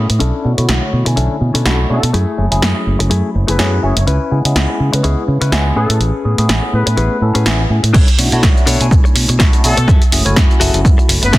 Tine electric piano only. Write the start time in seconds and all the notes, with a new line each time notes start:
0.44 A3 C#4 D4 E4 F#4
0.57 D3 A3 E4 F#4 C#5
1.06 D3 A3 E4 C#5 G#5
1.65 A3 C#4 D4 E4 F#4
1.89 A3 C#4 D4 E4 F#4
2.38 F#3 A3 C#4 E4 G#4
2.51 F#3 A3 C#4 E4 G#4
2.99 F#3 A3 C#4 E4
3.58 F#3 A3 C#4 E4 G#4
3.83 F#3 A3 C#4 E4 G#4
4.31 G#3 B3 C#4 E4 G#4
4.45 G#3 B3 C#4 E4 G#4
4.93 G#3 B3 C#4 E4 B4
5.52 G#3 B3 C#4 E4 G#4
5.76 A3 B3 C#4 E4 G#4
6.24 A3 B3 C#4 E4 G#4
6.38 A3 B3 C#4 E4 G#4
6.86 A3 B3 C#4 E4
7.21 A3 B3 C#4 E4 A4
7.46 A3 B3 C#4 E4 G#4
7.70 A3 B3 C#4 E4 G#4
8.19 A3 C#4 D4 E4 F#4
8.32 A3 D4 E4 F#4 C#5
8.80 A3 D4 E4 C#5 G#5
9.40 A3 C#4 D4 E4 F#4
9.64 A3 C#4 D4 E4 F#4
10.12 A3 C#4 E4 F#4 G#4
10.25 A3 C#4 E4 F#4 G#5
10.73 A3 C#4 E4 F#4
11.33 A3 C#4 E4 F#4 G#4